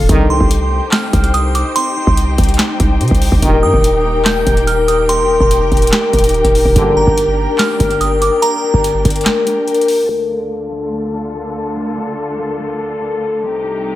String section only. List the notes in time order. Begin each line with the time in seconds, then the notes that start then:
0.09 D#4 G4 C5 G5
3.43 A#4
6.76 D4
10.09 D2 D3 F4 A4
13.43 C2 C3 D#4 G4